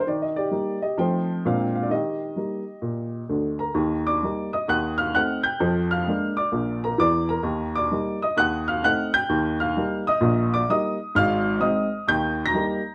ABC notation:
X:1
M:4/4
L:1/16
Q:"Swing" 1/4=130
K:Eb
V:1 name="Upright piano"
d e [Gd]4 [Ge]2 [cg]4 f g f d | [Ge]12- [Ge]2 [Bb]2- | [Bb]2 [dd']4 [ee']2 [_g_g']2 [ff']2 [gg']2 [=g=g']2- | [gg']2 [ff']4 [dd']4 [Bb]2 [dd']2 [Bb]2- |
[Bb]2 [dd']4 [ee']2 [_g_g']2 [ff']2 [gg']2 [=g=g']2- | [gg']2 [ff']4 [ee']4 [dd']2 [ee']2 z2 | [ff']4 [ee']4 [gg']3 [bb']4- [bb'] |]
V:2 name="Upright piano" clef=bass
E,4 [G,B,E]4 [F,=A,CE]4 [B,,_A,CD]4 | E,4 [G,B,E]4 B,,4 [D,,D,]4 | [E,,E,]4 [G,B,E]4 [E,,E,]4 [=A,CE]4 | [F,,F,]4 [A,B,D]4 [B,,,B,,]4 [_F,,_F,]4 |
[E,,E,]4 [G,B,E]4 [E,,E,]4 [=A,CE]4 | [E,,E,]4 [G,B,E]4 [B,,,B,,]4 [G,B,E]4 | [A,,,A,,]4 [A,CE]4 [E,,E,]4 [G,B,E]4 |]